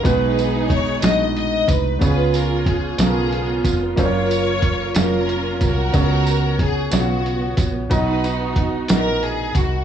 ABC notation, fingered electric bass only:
X:1
M:6/8
L:1/8
Q:3/8=61
K:C#mix
V:1 name="Fingered electric bass" clef=bass
B,,,3 A,,,2 ^B,,, | C,,3 B,,,2 E,,, | F,,,3 E,,,2 ^B,,, | C,,3 B,,,2 A,,, |
B,,,3 A,,,2 ^B,,, |]